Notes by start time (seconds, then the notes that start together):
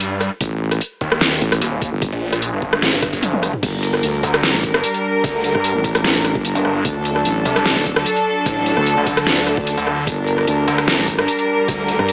Already playing: G2
0.00 closed hi-hat
0.21 cross-stick, closed hi-hat
0.41 A1, kick, closed hi-hat
0.71 cross-stick, closed hi-hat
0.81 closed hi-hat
1.01 D#2, kick
1.12 cross-stick
1.21 snare, closed hi-hat
1.41 A1, closed hi-hat
1.52 cross-stick, closed hi-hat
1.61 D#1, closed hi-hat
1.82 kick, closed hi-hat
1.92 G1
2.02 kick, closed hi-hat
2.12 A#1
2.33 cross-stick, closed hi-hat
2.42 closed hi-hat
2.53 G1
2.62 kick
2.73 cross-stick
2.82 A1, snare, closed hi-hat
2.93 G1
3.02 kick, cross-stick, closed hi-hat
3.13 kick, closed hi-hat
3.23 closed hi-hat, high tom
3.33 high tom
3.43 cross-stick, closed hi-hat
3.53 mid tom
3.63 G1 G3 D4 A#4, kick, closed hi-hat, crash
3.83 closed hi-hat
3.94 cross-stick
4.03 D2, closed hi-hat
4.23 D2, closed hi-hat
4.34 cross-stick, closed hi-hat
4.43 snare, closed hi-hat
4.54 A1
4.63 kick, closed hi-hat
4.74 G1, cross-stick
4.84 closed hi-hat
4.94 closed hi-hat
5.24 D2, kick, closed hi-hat
5.44 closed hi-hat
5.55 G2, cross-stick
5.64 closed hi-hat
5.75 A1
5.84 kick, closed hi-hat
5.95 cross-stick, closed hi-hat
6.04 snare, closed hi-hat
6.15 A1
6.25 cross-stick, closed hi-hat
6.35 G1, kick
6.45 closed hi-hat
6.55 G1, closed hi-hat
6.65 G1, cross-stick
6.85 D2 F#3 A4, kick, closed hi-hat
7.05 closed hi-hat
7.16 cross-stick
7.25 A1, closed hi-hat
7.45 C2, closed hi-hat
7.56 cross-stick, closed hi-hat
7.66 snare, closed hi-hat
7.76 D#1
7.86 kick, closed hi-hat
7.96 D2, cross-stick
8.06 closed hi-hat
8.16 closed hi-hat
8.46 A1, kick, closed hi-hat
8.66 closed hi-hat
8.77 D2, cross-stick
8.86 closed hi-hat
8.97 D2
9.06 kick, closed hi-hat
9.17 cross-stick, closed hi-hat
9.27 snare, closed hi-hat
9.37 D2
9.47 cross-stick, closed hi-hat
9.57 D2, kick
9.67 closed hi-hat
9.77 D2, closed hi-hat
9.87 cross-stick
10.07 G1 G3 A#4, kick, closed hi-hat
10.27 closed hi-hat
10.38 cross-stick
10.47 D2, closed hi-hat
10.68 D2, closed hi-hat
10.78 cross-stick, closed hi-hat
10.88 snare, closed hi-hat
10.98 A1
11.08 kick, closed hi-hat
11.18 G1, cross-stick
11.28 closed hi-hat
11.39 closed hi-hat
11.68 D2, kick, closed hi-hat
11.88 closed hi-hat
11.99 G2, cross-stick
12.08 closed hi-hat